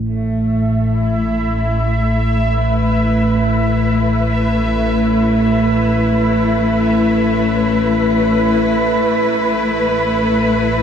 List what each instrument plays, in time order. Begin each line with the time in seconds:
Already playing: synth drone A1 A2
0.07 cello section A3, synth texture E5
0.93 cello section E4
2.58 cello section B4
8.58 synth drone A1 A2